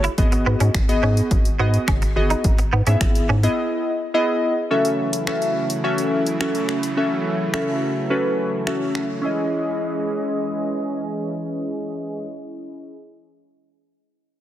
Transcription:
0.04 clean electric guitar E4, closed hi-hat
0.18 analog synth bass G#1, synth keys B3 F#4 G#4 D#5, kick, closed hi-hat
0.32 muted clean electric guitar stroke, closed hi-hat
0.46 analog synth bass G#2, clean electric guitar B3
0.60 analog synth bass G#2, clean electric guitar C#4, closed hi-hat
0.74 analog synth bass G#1, finger snap, kick, closed hi-hat
0.89 synth keys B3 F#4 G#4 D#5, closed hi-hat
1.03 analog synth bass G#2, clean electric guitar C#4
1.17 closed hi-hat
1.31 analog synth bass G#1, kick, closed hi-hat
1.45 closed hi-hat
1.59 analog synth bass G#2, synth keys B3 F#4 G#4 D#5, clean electric guitar B3
1.74 closed hi-hat
1.88 analog synth bass F#1, clean electric guitar C#4, finger snap, kick, closed hi-hat
2.02 muted clean electric guitar stroke, closed hi-hat
2.16 analog synth bass G1, synth keys B3 F#4 G#4 D#5
2.30 clean electric guitar D#4, closed hi-hat
2.44 analog synth bass G#1, kick, closed hi-hat
2.58 muted clean electric guitar stroke, closed hi-hat
2.73 analog synth bass G#2, clean electric guitar B3
2.87 analog synth bass G#2, synth keys B3 E4 G#4 E5, clean electric guitar C#4, closed hi-hat
3.01 analog synth bass G#1, finger snap, kick, closed hi-hat
3.15 closed hi-hat
3.29 analog synth bass G#2, clean electric guitar C#4
3.43 synth keys B3 E4 G#4 D#5, closed hi-hat
4.14 synth keys B3 E4 G#4 D#5
4.71 supersaw synth C#3 E3 F#3 A3 E4, synth keys C#4 F#4 A4 E5
4.85 closed hi-hat
5.13 closed hi-hat
5.27 synth keys C#4 F#4 A4 E5, finger snap
5.42 closed hi-hat
5.70 closed hi-hat
5.84 synth keys C#4 F#4 A4 E5
5.98 closed hi-hat
6.27 closed hi-hat
6.40 synth keys C#4 F#4 A4 E5, finger snap
6.55 closed hi-hat
6.69 finger snap
6.83 closed hi-hat
6.97 synth keys C#4 F#4 A4 E5
7.54 synth keys C#4 F#4 A4 E5, finger snap
8.10 synth keys C#4 F#4 A4 B4
8.67 synth keys C#4 F#4 A4 E5, finger snap
8.95 finger snap
9.22 supersaw synth E3 G#3 C#4 G#4 D#5, synth keys C#4 E4 G#4
9.26 synth keys D#5

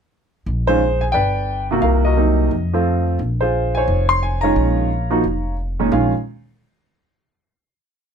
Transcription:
0.46 upright bass A#1
0.67 grand piano D#3 G#3 C#4 F4 G#4 C5
1.01 grand piano G#5
1.12 upright bass G1, grand piano B4 D5 G5
1.71 grand piano C3 A#3 F4 F#4
1.82 upright bass C2, grand piano A#4 F5
2.05 grand piano F#4 A#4 D#5
2.17 grand piano C3 F#3 A#3 D#4
2.51 upright bass F2
2.74 grand piano F3 A3 C4 F4
3.19 upright bass A#1
3.41 grand piano F4 G#4 C5
3.75 grand piano C5 C#5 G#5
3.88 upright bass F1
4.09 grand piano C6
4.23 grand piano G#5
4.41 grand piano D#3 G#3 C#4 F4 C#5 F5 A#5
4.56 upright bass A#1
5.11 grand piano F3 A#3 D#4 F#4
5.24 upright bass F1
5.79 grand piano A#2 D#3 G#3 C#4 D#4
5.91 upright bass A#1, grand piano D#3 G#3 C#4 F4 F5

